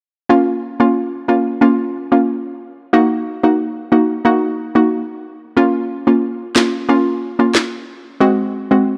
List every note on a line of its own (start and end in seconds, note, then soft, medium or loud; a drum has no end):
0.29 0.76 A#3 medium
0.29 0.76 C#4 medium
0.29 0.76 F4 loud
0.80 1.25 A#3 medium
0.80 1.25 C#4 medium
0.80 1.25 F4 medium
1.28 1.59 A#3 medium
1.28 1.59 C#4 medium
1.28 1.59 F4 medium
1.61 1.80 A#3 medium
1.61 1.80 C#4 medium
1.61 1.80 F4 medium
2.12 2.29 A#3 medium
2.12 2.29 C#4 medium
2.12 2.29 F4 medium
2.93 3.39 A#3 medium
2.93 3.40 D#4 medium
2.93 3.40 F#4 loud
3.43 3.88 A#3 medium
3.43 3.89 D#4 medium
3.43 3.89 F#4 medium
3.92 4.23 A#3 medium
3.92 4.23 D#4 medium
3.92 4.23 F#4 medium
4.25 4.44 A#3 medium
4.25 4.44 D#4 medium
4.25 4.44 F#4 loud
4.75 4.92 A#3 medium
4.75 4.92 D#4 medium
4.75 4.92 F#4 medium
5.57 6.03 A#3 medium
5.57 6.03 C#4 medium
5.57 6.03 F4 loud
6.07 6.52 A#3 medium
6.07 6.52 C#4 medium
6.07 6.52 F4 medium
6.56 6.86 A#3 medium
6.56 6.86 C#4 medium
6.56 6.87 F4 medium
6.56 snare loud
6.56 clap medium
6.89 7.07 A#3 medium
6.89 7.08 C#4 medium
6.89 7.08 F4 loud
7.39 7.56 A#3 medium
7.39 7.56 C#4 medium
7.39 7.56 F4 medium
7.55 snare loud
7.55 clap medium
8.20 8.67 G#3 medium
8.20 8.67 C4 medium
8.20 8.67 F#4 loud
8.71 8.97 G#3 medium
8.71 8.97 C4 medium
8.71 8.97 F#4 medium